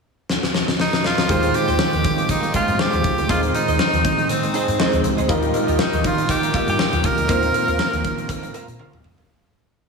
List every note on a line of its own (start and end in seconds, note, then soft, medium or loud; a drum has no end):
0.29 snare medium
0.43 snare medium
0.54 snare medium
0.68 snare medium
0.80 1.07 D#4 medium
0.80 snare medium
0.93 snare medium
1.04 1.57 F4 medium
1.04 snare medium
1.18 snare medium
1.28 1.48 D#2 loud
1.28 2.00 D#3 medium
1.28 3.27 D#3 medium
1.28 2.76 G#3 medium
1.28 1.47 G#3 medium
1.28 3.27 G#3 medium
1.28 5.25 C4 medium
1.28 1.43 C4 medium
1.28 2.76 F4 medium
1.28 3.27 F4 medium
1.28 2.76 G4 medium
1.28 1.43 G4 medium
1.28 2.77 C5 medium
1.28 1.42 C5 medium
1.28 kick loud
1.28 closed hi-hat medium
1.43 muted clean electric guitar stroke soft
1.43 closed hi-hat soft
1.54 2.30 G4 loud
1.54 muted clean electric guitar stroke soft
1.54 closed hi-hat medium
1.68 1.77 D#2 medium
1.68 1.78 G#3 soft
1.68 1.79 C4 medium
1.68 1.79 G4 medium
1.68 1.79 C5 medium
1.68 closed hi-hat soft
1.79 muted clean electric guitar stroke soft
1.79 snare loud
1.93 2.02 D#2 medium
1.93 muted clean electric guitar stroke medium
1.93 closed hi-hat soft
2.04 2.23 D#3 medium
2.04 kick medium
2.04 closed hi-hat medium
2.18 muted clean electric guitar stroke soft
2.18 closed hi-hat soft
2.29 2.48 D#3 medium
2.29 2.53 D#4 medium
2.29 muted clean electric guitar stroke soft
2.29 kick medium
2.29 closed hi-hat loud
2.43 muted clean electric guitar stroke soft
2.43 closed hi-hat soft
2.54 2.72 G#3 medium
2.54 2.68 C4 medium
2.54 2.82 F4 medium
2.54 2.67 G4 medium
2.54 2.67 C5 medium
2.54 kick medium
2.54 closed hi-hat medium
2.68 2.77 G#2 medium
2.68 muted clean electric guitar stroke soft
2.68 closed hi-hat medium
2.78 2.85 G3 soft
2.78 3.29 F4 soft
2.78 3.29 G4 soft
2.78 3.29 G4 loud
2.78 3.29 C5 medium
2.78 muted clean electric guitar stroke soft
2.78 snare loud
2.85 3.27 G#3 soft
2.93 3.02 D#2 medium
2.93 muted clean electric guitar stroke soft
2.93 closed hi-hat soft
3.04 3.15 C#2 medium
3.04 kick medium
3.04 closed hi-hat medium
3.18 3.27 D2 medium
3.18 muted clean electric guitar stroke soft
3.18 closed hi-hat soft
3.28 3.48 D#2 loud
3.28 4.00 D#3 medium
3.28 4.76 G#3 medium
3.28 5.27 G#3 medium
3.28 4.76 C4 medium
3.28 3.47 D#4 medium
3.28 5.27 D#4 medium
3.28 4.77 D#4 medium
3.28 3.41 F4 medium
3.28 3.43 G#4 medium
3.28 3.43 C5 medium
3.28 4.77 C5 medium
3.28 3.42 D#5 medium
3.28 kick loud
3.28 closed hi-hat medium
3.43 muted clean electric guitar stroke soft
3.43 closed hi-hat soft
3.54 4.26 D#4 medium
3.54 muted clean electric guitar stroke soft
3.54 closed hi-hat medium
3.68 3.76 D#2 medium
3.68 3.78 D#4 soft
3.68 3.78 G#4 medium
3.68 3.79 C5 medium
3.68 3.79 D#5 medium
3.68 closed hi-hat soft
3.79 muted clean electric guitar stroke soft
3.79 snare loud
3.93 4.01 D#2 medium
3.93 muted clean electric guitar stroke soft
3.93 closed hi-hat soft
4.05 4.23 D#3 medium
4.05 kick loud
4.05 closed hi-hat medium
4.18 muted clean electric guitar stroke soft
4.18 closed hi-hat soft
4.29 4.48 D#3 loud
4.29 5.01 C4 medium
4.29 muted clean electric guitar stroke soft
4.29 closed hi-hat medium
4.43 muted clean electric guitar stroke soft
4.43 closed hi-hat soft
4.54 4.72 D#4 medium
4.54 4.68 G#4 medium
4.54 4.67 C5 medium
4.54 4.67 D#5 medium
4.54 closed hi-hat medium
4.68 4.76 G#2 medium
4.68 muted clean electric guitar stroke soft
4.68 closed hi-hat soft
4.78 5.29 G#3 medium
4.78 5.29 C4 soft
4.78 4.97 D#4 medium
4.78 5.27 D#4 soft
4.78 4.93 G#4 medium
4.78 5.29 C5 medium
4.78 4.92 C5 medium
4.78 4.92 D#5 medium
4.78 snare loud
4.93 5.02 D#2 medium
4.93 muted clean electric guitar stroke soft
4.93 closed hi-hat soft
5.04 5.15 C#2 medium
5.04 muted clean electric guitar stroke soft
5.04 closed hi-hat medium
5.17 5.26 D2 medium
5.17 5.28 D#4 medium
5.17 5.29 G#4 medium
5.17 5.30 C5 medium
5.17 5.29 D#5 medium
5.17 closed hi-hat soft
5.28 5.48 D#2 medium
5.28 7.27 D#3 medium
5.28 6.00 D#3 medium
5.28 7.25 G3 medium
5.28 5.47 A#3 medium
5.28 7.25 D#4 medium
5.28 7.27 D#4 medium
5.28 9.25 F4 medium
5.28 5.43 F4 medium
5.28 7.25 F4 medium
5.28 7.27 G4 medium
5.28 5.42 G4 medium
5.28 7.27 A#4 medium
5.28 7.26 A#4 medium
5.28 5.42 D#5 medium
5.28 kick loud
5.28 closed hi-hat medium
5.28 cowbell medium
5.43 muted clean electric guitar stroke soft
5.43 closed hi-hat soft
5.54 muted clean electric guitar stroke soft
5.54 closed hi-hat medium
5.54 cowbell medium
5.67 5.76 D#2 medium
5.67 5.78 A#3 soft
5.67 5.79 F4 medium
5.67 5.79 G4 medium
5.67 5.79 D#5 medium
5.67 closed hi-hat soft
5.79 6.07 D#4 medium
5.79 muted clean electric guitar stroke soft
5.79 snare loud
5.79 cowbell medium
5.93 6.01 D#2 medium
5.93 muted clean electric guitar stroke medium
5.93 closed hi-hat soft
6.04 6.23 D#3 medium
6.04 6.30 F4 medium
6.04 kick loud
6.04 closed hi-hat medium
6.18 muted clean electric guitar stroke soft
6.18 closed hi-hat soft
6.29 6.48 D#3 loud
6.29 6.66 G4 medium
6.29 muted clean electric guitar stroke soft
6.29 kick medium
6.29 closed hi-hat loud
6.29 cowbell medium
6.43 muted clean electric guitar stroke soft
6.43 closed hi-hat soft
6.54 6.72 A#3 medium
6.54 6.68 F4 medium
6.54 6.67 G4 medium
6.54 6.67 D#5 medium
6.54 kick loud
6.54 closed hi-hat medium
6.54 cowbell medium
6.68 6.76 G2 medium
6.68 7.07 G4 medium
6.68 muted clean electric guitar stroke soft
6.68 closed hi-hat medium
6.79 muted clean electric guitar stroke soft
6.79 snare loud
6.79 cowbell medium
6.93 7.01 D#2 medium
6.93 muted clean electric guitar stroke medium
6.93 closed hi-hat soft
7.04 7.14 C#2 medium
7.04 8.55 A#4 loud
7.04 kick medium
7.04 closed hi-hat medium
7.18 7.26 D2 medium
7.18 muted clean electric guitar stroke soft
7.18 closed hi-hat medium
7.28 7.48 D#2 loud
7.28 8.00 D#3 medium
7.28 9.25 A#3 medium
7.28 9.27 A#3 medium
7.28 9.25 C4 medium
7.28 9.28 C4 medium
7.28 7.47 F4 medium
7.28 9.25 F4 medium
7.28 7.43 A#4 medium
7.28 9.26 C5 medium
7.28 7.42 C5 loud
7.28 7.42 F5 loud
7.28 kick loud
7.28 closed hi-hat medium
7.28 cowbell medium
7.43 muted clean electric guitar stroke soft
7.43 closed hi-hat soft
7.54 muted clean electric guitar stroke soft
7.54 closed hi-hat medium
7.54 cowbell medium
7.67 7.76 D#2 medium
7.67 7.77 F4 soft
7.67 7.78 A#4 soft
7.67 7.78 C5 soft
7.67 7.79 F5 medium
7.67 closed hi-hat soft
7.79 muted clean electric guitar stroke soft
7.79 snare loud
7.79 cowbell medium
7.93 8.01 D#2 medium
7.93 muted clean electric guitar stroke medium
7.93 closed hi-hat medium
8.04 8.23 D#3 medium
8.04 kick medium
8.04 closed hi-hat medium
8.18 muted clean electric guitar stroke soft
8.18 closed hi-hat soft
8.29 8.48 D#3 medium
8.29 muted clean electric guitar stroke soft
8.29 kick medium
8.29 closed hi-hat loud
8.29 cowbell medium
8.43 muted clean electric guitar stroke medium
8.43 closed hi-hat soft
8.54 8.72 F4 medium
8.54 8.68 A#4 medium
8.54 8.68 C5 medium
8.54 8.67 F5 medium
8.54 closed hi-hat medium
8.54 cowbell medium
8.68 8.76 A#2 medium
8.68 closed hi-hat medium
8.79 8.97 F4 medium
8.79 8.93 A#4 medium
8.79 8.92 C5 medium
8.79 8.92 F5 medium
8.79 high tom medium
8.79 cowbell medium
8.93 9.01 D#2 medium
8.93 muted clean electric guitar stroke soft
8.93 mid tom medium
9.04 9.15 C#2 medium
9.04 muted clean electric guitar stroke soft
9.04 mid tom medium
9.18 9.26 D2 medium
9.18 9.31 F4 medium
9.18 9.31 A#4 medium
9.18 9.31 C5 medium
9.18 9.30 F5 medium
9.18 floor tom medium